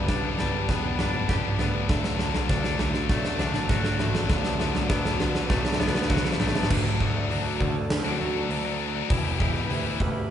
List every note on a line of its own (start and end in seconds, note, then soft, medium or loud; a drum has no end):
0.00 0.99 G2 medium
0.00 0.37 G3 medium
0.00 0.67 B3 medium
0.00 0.38 G4 medium
0.00 1.85 G4 medium
0.00 1.85 B4 medium
0.00 1.85 D5 medium
0.00 1.87 A5 medium
0.08 0.35 G1 medium
0.08 0.37 G2 medium
0.08 0.38 D3 medium
0.08 0.38 G3 medium
0.08 0.38 B3 medium
0.08 0.40 D4 medium
0.08 kick loud
0.08 snare loud
0.38 0.65 G1 medium
0.38 0.67 G2 medium
0.38 0.67 D3 medium
0.38 0.68 G3 medium
0.38 0.68 B3 medium
0.38 0.69 D4 medium
0.38 snare medium
0.38 floor tom medium
0.68 0.96 E1 medium
0.68 0.96 G2 medium
0.68 0.97 D3 medium
0.68 0.97 G3 medium
0.68 0.97 B3 medium
0.68 0.99 D4 loud
0.68 kick loud
0.68 snare medium
0.98 1.26 G1 medium
0.98 1.27 G2 medium
0.98 1.27 D3 medium
0.98 1.28 G3 medium
0.98 1.28 B3 medium
0.98 1.29 D4 loud
0.98 snare medium
0.98 floor tom medium
1.14 mid tom medium
1.28 1.56 G1 medium
1.28 1.57 G2 medium
1.28 1.58 D3 medium
1.28 1.58 G3 medium
1.28 1.58 B3 medium
1.28 1.60 D4 medium
1.28 1.89 G4 medium
1.28 kick loud
1.28 snare medium
1.59 1.86 D2 medium
1.59 1.87 G2 medium
1.59 1.87 D3 medium
1.59 1.88 G3 medium
1.59 1.88 B3 medium
1.59 1.89 D4 loud
1.59 snare medium
1.59 floor tom medium
1.88 2.16 D2 medium
1.88 2.18 D3 medium
1.88 2.19 F#3 medium
1.88 2.19 A3 loud
1.88 2.19 D4 loud
1.88 6.66 F#4 medium
1.88 4.28 A4 medium
1.88 6.66 D5 medium
1.88 6.66 A5 medium
1.88 kick loud
1.88 snare loud
1.88 floor tom medium
2.04 snare loud
2.19 2.46 D2 medium
2.19 2.49 D3 medium
2.19 2.49 F#3 medium
2.19 2.50 A3 medium
2.19 2.50 D4 medium
2.19 snare medium
2.35 snare loud
2.35 floor tom medium
2.49 2.76 D2 medium
2.49 2.78 D3 medium
2.49 2.79 F#3 medium
2.49 2.79 A3 medium
2.49 2.79 D4 medium
2.49 kick loud
2.49 snare loud
2.64 snare loud
2.79 3.06 D2 medium
2.79 3.09 D3 medium
2.79 3.09 F#3 medium
2.79 3.10 A3 medium
2.79 3.10 D4 medium
2.79 snare loud
2.79 floor tom medium
2.94 snare medium
3.09 3.36 B1 medium
3.09 3.39 D3 medium
3.09 3.39 F#3 medium
3.09 3.40 A3 medium
3.09 3.40 D4 loud
3.09 kick loud
3.09 snare medium
3.25 snare loud
3.39 3.66 D2 medium
3.39 3.69 D3 medium
3.39 3.69 F#3 medium
3.39 3.70 A3 medium
3.39 3.70 D4 medium
3.39 snare loud
3.39 floor tom medium
3.54 snare medium
3.54 mid tom medium
3.69 3.96 D2 medium
3.69 3.99 D3 medium
3.69 4.00 F#3 medium
3.69 4.00 A3 medium
3.69 4.00 D4 medium
3.69 6.09 F#4 medium
3.69 kick loud
3.69 snare loud
3.84 snare loud
3.99 4.26 A1 loud
3.99 4.29 D3 medium
3.99 4.29 F#3 medium
3.99 4.29 A3 medium
3.99 4.30 D4 loud
3.99 snare medium
3.99 floor tom medium
4.15 snare loud
4.29 4.56 D2 loud
4.29 4.57 D3 medium
4.29 4.58 F#3 medium
4.29 4.58 B3 loud
4.29 4.58 D4 medium
4.29 6.68 B4 medium
4.29 kick loud
4.29 snare loud
4.29 floor tom medium
4.45 snare loud
4.59 4.86 D2 medium
4.59 4.87 D3 medium
4.59 4.87 F#3 loud
4.59 4.88 B3 medium
4.59 4.88 D4 loud
4.59 snare loud
4.75 snare loud
4.75 floor tom medium
4.88 5.17 D2 medium
4.88 5.17 D3 medium
4.88 5.18 F#3 medium
4.88 5.18 B3 medium
4.88 5.18 D4 medium
4.88 kick loud
4.88 snare loud
5.05 snare loud
5.18 5.46 D2 loud
5.18 5.47 D3 medium
5.18 5.48 F#3 medium
5.18 5.48 B3 medium
5.18 5.48 D4 medium
5.18 snare loud
5.18 floor tom medium
5.35 snare loud
5.48 5.76 B1 loud
5.48 5.77 D3 medium
5.48 5.78 F#3 medium
5.48 6.39 A3 medium
5.48 5.78 B3 loud
5.48 5.79 D4 loud
5.48 kick loud
5.48 snare loud
5.65 snare loud
5.72 snare loud
5.79 6.06 D2 medium
5.79 6.08 D3 medium
5.79 6.09 F#3 medium
5.79 6.09 B3 medium
5.79 6.09 D4 medium
5.79 snare loud
5.79 floor tom medium
5.87 snare loud
5.95 snare loud
6.02 snare loud
6.09 6.37 D2 medium
6.09 6.38 D3 medium
6.09 6.38 F#3 medium
6.09 6.39 B3 medium
6.09 6.39 D4 medium
6.09 6.70 F#4 medium
6.09 kick loud
6.09 snare loud
6.17 snare loud
6.25 snare loud
6.32 snare loud
6.39 6.66 A1 medium
6.39 6.68 D3 medium
6.39 6.68 F#3 medium
6.39 6.70 A3 medium
6.39 6.68 B3 loud
6.39 6.68 D4 loud
6.39 snare loud
6.39 floor tom medium
6.39 mid tom medium
6.48 snare loud
6.55 snare loud
6.63 snare loud
6.69 6.96 D2 loud
6.69 7.15 D3 medium
6.69 6.99 F#3 medium
6.69 6.85 A3 medium
6.69 6.84 D4 loud
6.69 6.83 F#4 medium
6.69 9.08 F#4 medium
6.69 9.08 A4 medium
6.69 9.08 D5 medium
6.69 9.08 A5 medium
6.69 kick loud
6.69 crash loud
6.84 6.99 A3 medium
6.84 7.00 D4 medium
6.84 7.00 F#4 medium
7.00 7.26 D2 medium
7.00 7.29 F#3 medium
7.00 7.29 A3 medium
7.00 7.29 D4 medium
7.00 7.30 F#4 loud
7.00 kick medium
7.29 7.56 D2 medium
7.29 7.75 D3 medium
7.29 7.60 F#3 medium
7.29 7.46 A3 loud
7.29 7.45 D4 medium
7.29 7.44 F#4 medium
7.29 open hi-hat medium
7.45 7.59 A3 medium
7.45 7.60 D4 medium
7.45 7.60 F#4 medium
7.60 7.86 D2 loud
7.60 muted distorted electric guitar stroke soft
7.60 kick medium
7.89 8.16 D2 medium
7.89 snare loud
7.89 open hi-hat medium
8.05 8.19 A3 medium
8.05 8.19 D4 medium
8.05 8.20 F#4 medium
8.20 8.46 D2 medium
8.20 8.49 F#3 medium
8.20 8.50 A3 medium
8.20 8.50 D4 medium
8.20 8.50 F#4 medium
8.49 9.02 D2 medium
8.49 8.95 D3 loud
8.49 8.78 F#3 medium
8.49 8.65 A3 loud
8.49 8.64 D4 medium
8.49 8.63 F#4 loud
8.49 open hi-hat medium
8.65 8.78 A3 medium
8.65 8.79 D4 medium
8.65 8.80 F#4 medium
8.79 9.08 F#3 medium
8.79 8.95 A3 medium
8.79 8.94 D4 medium
8.79 8.93 F#4 loud
8.94 9.09 A3 medium
8.94 9.08 D4 medium
8.94 9.08 F#4 medium
9.09 9.36 E1 loud
9.09 9.37 E3 medium
9.09 9.26 B3 medium
9.09 9.24 E4 loud
9.09 10.30 G4 medium
9.09 9.23 G4 loud
9.09 10.30 B4 medium
9.09 10.30 E5 medium
9.09 10.30 B5 medium
9.09 kick loud
9.09 open hi-hat medium
9.24 9.39 B3 medium
9.24 9.39 E4 medium
9.24 9.39 G4 medium
9.39 9.66 E1 medium
9.39 9.68 E3 medium
9.39 9.70 B3 medium
9.39 9.69 E4 medium
9.39 9.70 G4 loud
9.39 kick medium
9.55 snare soft
9.69 9.96 D2 medium
9.69 9.99 E3 loud
9.69 9.85 B3 loud
9.69 9.84 E4 loud
9.69 9.83 G4 loud
9.69 open hi-hat medium
9.84 10.00 B3 medium
9.84 9.99 E4 medium
9.84 9.99 G4 medium
10.00 10.26 D2 loud
10.00 muted distorted electric guitar stroke soft
10.00 kick medium